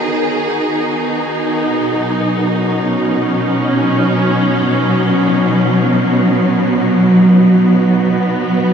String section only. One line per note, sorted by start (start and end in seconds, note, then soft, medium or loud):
0.00 1.72 D#3 medium
0.00 8.73 D#4 medium
0.00 2.42 G#4 medium
0.00 3.33 A#4 medium
1.73 8.73 B2 medium
1.90 8.73 F#3 medium
2.64 7.51 C#4 medium
7.28 8.73 B3 medium